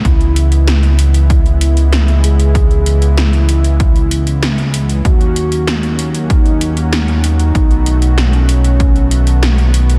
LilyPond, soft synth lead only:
\new Staff \with { instrumentName = "Soft synth lead" } { \time 4/4 \key cis \minor \tempo 4 = 96 e'2 e'4. gis'8~ | gis'4 e'2. | fis'2 dis'4. dis'8~ | dis'4 cis'2. | }